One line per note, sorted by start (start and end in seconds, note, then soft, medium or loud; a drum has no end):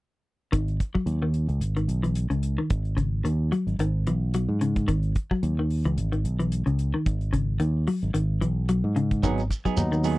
0.52 0.79 G#1 medium
0.52 0.76 D#3 medium
0.52 kick medium
0.52 closed hi-hat medium
0.68 closed hi-hat soft
0.80 kick medium
0.80 closed hi-hat soft
0.95 1.18 F#3 medium
0.95 kick medium
1.06 1.47 D#2 medium
1.06 closed hi-hat medium
1.22 1.46 D#3 medium
1.34 closed hi-hat soft
1.48 1.60 C#2 medium
1.48 closed hi-hat soft
1.60 1.87 G#1 medium
1.60 closed hi-hat medium
1.77 2.00 D#3 medium
1.77 closed hi-hat soft
1.88 2.29 B1 medium
1.88 closed hi-hat soft
2.03 2.27 E3 medium
2.03 closed hi-hat soft
2.15 closed hi-hat medium
2.30 2.57 C#2 medium
2.30 2.54 C#3 medium
2.30 closed hi-hat soft
2.43 closed hi-hat soft
2.58 2.82 D#3 medium
2.70 3.22 G#1 medium
2.70 kick medium
2.70 closed hi-hat medium
2.85 closed hi-hat soft
2.97 3.21 C#3 medium
2.97 kick medium
2.97 closed hi-hat soft
3.24 3.50 D#2 medium
3.24 3.48 D#3 medium
3.24 closed hi-hat medium
3.52 3.75 F#3 medium
3.52 closed hi-hat soft
3.67 3.78 G#1 medium
3.67 closed hi-hat soft
3.79 4.05 G#1 medium
3.79 4.03 D#3 medium
3.79 closed hi-hat medium
4.07 4.47 B1 medium
4.07 4.30 E3 medium
4.07 closed hi-hat soft
4.34 4.58 F#3 medium
4.34 closed hi-hat medium
4.49 4.86 G#2 medium
4.61 4.85 C#3 medium
4.61 closed hi-hat soft
4.76 kick medium
4.76 closed hi-hat soft
4.88 5.14 G#1 medium
4.88 5.11 D#3 medium
4.88 kick medium
4.88 closed hi-hat medium
5.03 closed hi-hat soft
5.15 kick medium
5.15 closed hi-hat soft
5.31 5.54 F#3 medium
5.31 kick medium
5.43 5.83 D#2 medium
5.43 closed hi-hat medium
5.59 5.82 D#3 medium
5.70 open hi-hat medium
5.85 5.97 C#2 medium
5.85 6.09 E3 medium
5.85 closed hi-hat soft
5.97 6.23 G#1 medium
5.97 closed hi-hat medium
6.12 6.36 D#3 medium
6.12 closed hi-hat soft
6.24 6.64 B1 medium
6.24 closed hi-hat soft
6.39 6.63 E3 medium
6.39 closed hi-hat soft
6.52 closed hi-hat medium
6.66 6.92 C#2 medium
6.66 6.90 C#3 medium
6.66 closed hi-hat soft
6.79 closed hi-hat soft
6.94 7.17 D#3 medium
7.06 7.58 G#1 medium
7.06 kick medium
7.06 closed hi-hat medium
7.21 closed hi-hat soft
7.33 7.56 C#3 medium
7.33 kick medium
7.33 closed hi-hat soft
7.60 7.86 D#2 medium
7.60 7.83 D#3 medium
7.60 closed hi-hat medium
7.87 8.11 F#3 medium
7.87 open hi-hat medium
8.02 8.14 G#1 medium
8.02 closed hi-hat soft
8.14 8.40 G#1 medium
8.14 8.37 D#3 medium
8.14 closed hi-hat medium
8.41 8.82 B1 medium
8.41 8.65 E3 medium
8.41 closed hi-hat soft
8.69 8.92 F#3 medium
8.69 closed hi-hat medium
8.84 9.21 G#2 medium
8.96 9.19 C#3 medium
8.96 closed hi-hat soft
9.11 kick medium
9.11 closed hi-hat soft
9.23 9.49 G#1 medium
9.23 9.47 D#3 medium
9.23 9.43 F#3 medium
9.23 9.41 F#3 medium
9.23 9.43 B3 medium
9.23 9.41 B3 medium
9.23 9.43 D#4 medium
9.23 9.41 D#4 medium
9.23 9.41 G#4 medium
9.23 kick medium
9.23 closed hi-hat medium
9.23 shekere medium
9.38 closed hi-hat soft
9.38 shekere soft
9.51 kick medium
9.51 closed hi-hat soft
9.51 shekere medium
9.65 9.89 F#3 medium
9.65 9.81 B3 soft
9.65 9.81 D#4 soft
9.65 9.80 G#4 soft
9.65 kick medium
9.65 shekere soft
9.77 10.18 D#2 medium
9.77 10.06 F#3 medium
9.77 10.06 B3 medium
9.77 10.06 D#4 medium
9.77 closed hi-hat medium
9.77 shekere medium
9.92 10.15 D#3 medium
9.92 shekere soft
10.04 10.18 F#3 medium
10.04 10.18 B3 medium
10.04 10.18 D#4 medium
10.04 10.18 G#4 medium
10.04 open hi-hat medium
10.04 shekere medium